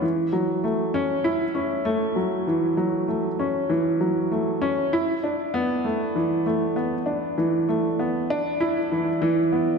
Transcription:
\new Staff \with { instrumentName = "Grand piano" } { \time 4/4 \key e \mixolydian \tempo 4 = 98 e8 fis8 a8 cis'8 e'8 cis'8 a8 fis8 | e8 fis8 a8 cis'8 e8 fis8 a8 cis'8 | e'8 d'8 b8 a8 e8 a8 b8 d'8 | e8 a8 b8 d'8 e'8 e8 e8 b8 | }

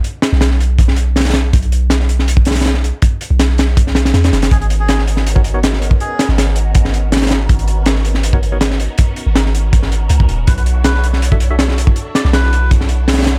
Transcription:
<<
  \new Staff \with { instrumentName = "Melodica" } { \time 4/4 \key b \lydian \tempo 4 = 161 r1 | r1 | r1 | gis'16 gis'16 r16 gis'8 r2 r8. |
gis'8. r2. r16 | r1 | r1 | b'16 b'16 r8 b'8 r2 r8 |
r8 d''16 d''16 b'4 r2 | }
  \new Staff \with { instrumentName = "Tine electric piano" } { \time 4/4 \key b \lydian r1 | r1 | r1 | r2 r16 <b dis' fis' ais' cis''>16 r16 <b dis' fis' ais' cis''>16 r4 |
r1 | r2 r16 <b dis' fis' ais' cis''>16 r16 <b dis' fis' ais' cis''>16 r4 | r1 | r2 r16 <d' fis' a' cis'' e''>16 r16 <d' fis' a' cis'' e''>16 r4 |
r1 | }
  \new Staff \with { instrumentName = "808-style bass" } { \clef bass \time 4/4 \key b \lydian r8. b,,2.~ b,,16 | b,,2.~ b,,8. r16 | r8. b,,2~ b,,16 e,8 fis,,8 | gis,,2.~ gis,,8. r16 |
r8. gis,,2.~ gis,,16 | gis,,2.~ gis,,8. r16 | r8. gis,,2~ gis,,16 cis,8 dis,,8 | b,,2.~ b,,8. r16 |
r8. b,,2.~ b,,16 | }
  \new DrumStaff \with { instrumentName = "Drums" } \drummode { \time 4/4 hh8 <hh sn>16 sn16 <hh sn>16 sn16 hh8 <hh bd>16 sn16 hh8 <hh sn>32 <hh sn>32 <hh sn>32 <hh sn>32 <hh sn>8 | <hh bd>16 hh16 hh8 <hh sn>16 sn16 hh16 sn16 hh16 bd16 <hh sn>32 <hh sn>32 <hh sn>32 <hh sn>32 <hh sn>16 sn16 hh8 | <hh bd>8 hh8 <hh sn>16 sn16 <hh sn>16 sn16 <hh bd>16 sn16 <hh sn>16 <hh sn>16 <hh sn>16 <hh sn>16 <hh sn>16 <hh sn>16 | <hh bd>16 hh16 hh8 <hh sn>16 sn16 hh16 sn16 hh16 bd16 hh8 <hh sn>16 sn16 hh16 bd16 |
hh8 <hh sn>16 sn16 <hh sn>16 sn16 hh8 <hh bd>16 sn16 hh8 <hh sn>32 <hh sn>32 <hh sn>32 <hh sn>32 <hh sn>8 | <hh bd>16 hh16 hh8 <hh sn>16 sn16 hh16 sn16 hh16 bd16 hh8 <hh sn>16 sn16 hh8 | <hh bd>8 hh8 <hh sn>16 sn16 hh8 <hh bd>16 sn16 hh8 hh16 bd16 hh8 | <hh bd>16 hh16 hh8 <hh sn>16 sn16 hh16 sn16 hh16 bd16 hh8 <hh sn>16 sn16 hh16 bd16 |
hh8 <hh sn>16 sn16 <hh sn>16 sn16 hh8 <hh bd>16 sn16 hh8 <hh sn>32 <hh sn>32 <hh sn>32 <hh sn>32 <hh sn>8 | }
>>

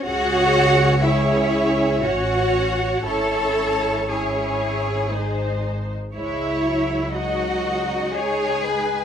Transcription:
<<
  \new Staff \with { instrumentName = "Violin section" } { \time 3/4 \key cis \minor \tempo 4 = 59 fis''4 e''4 fis''4 | a''4 gis''4. r8 | e''4 fis''4 gis''4 | }
  \new Staff \with { instrumentName = "Violin section" } { \time 3/4 \key cis \minor cis''4 cis''4 cis''4 | cis''4 cis''4 bis'4 | cis''4 dis''4 cis''8 b'8 | }
  \new Staff \with { instrumentName = "Cello section" } { \time 3/4 \key cis \minor fis'4 e'4 fis'4 | a'4 gis'4. r8 | e'4 fis'4 gis'4 | }
  \new Staff \with { instrumentName = "Viola section" } { \time 3/4 \key cis \minor << { gis'4 gis'4 fis'4 | e'4 e'4 dis'4 | e'4 dis'2 | } \\ { cis'4 cis'4 cis'4 | cis'4 cis'4 gis4 | gis8 fis4. gis4 | } >> }
  \new Staff \with { instrumentName = "Double bass section" } { \clef bass \time 3/4 \key cis \minor cis,2 a,,4 | gis,,2. | cis,2. | }
>>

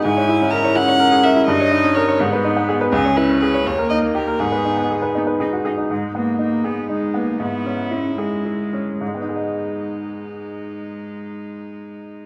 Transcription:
<<
  \new Staff \with { instrumentName = "Violin" } { \time 6/8 \key gis \minor \tempo 4. = 80 gis''4 ais''8 fis''4 e''8 | dis''4 cis''8 r4. | gis'8 b'8 b'8 cis''8 dis''8 ais'8 | gis'4. r4. |
dis'2. | e'2~ e'8 r8 | dis'2.~ | dis'2. | }
  \new Staff \with { instrumentName = "Grand piano" } { \time 6/8 \key gis \minor gis,16 cis''16 e'16 cis'16 ais'16 cis''16 e'16 cis''16 ais'16 gis'16 ais'16 e'16 | g,16 cis''16 dis'16 cis'16 ais'16 cis''16 gis,16 b'16 dis'16 b16 gis'16 b'16 | cis,16 cis''16 e'16 cis'16 gis'16 cis''16 dis,16 ais'16 dis'16 ais16 g'16 ais'16 | gis,16 b'16 dis'16 b16 gis'16 b'16 dis'16 b'16 gis'16 fis'16 gis'16 dis'16 |
gis,8 b8 dis'8 gis'8 dis'8 b8 | gis,8 cis'8 e'8 gis'8 e'8 cis'8 | <gis, gis b dis' gis' dis''>2.~ | <gis, gis b dis' gis' dis''>2. | }
  \new Staff \with { instrumentName = "Cello" } { \time 6/8 \key gis \minor e'4. cis'4. | dis'4. b4. | cis'4. ais4. | b4. b8 dis'8 dis'8 |
gis8 ais8 ais8 b8 gis8 ais8 | b4 cis'8 gis4. | gis2.~ | gis2. | }
>>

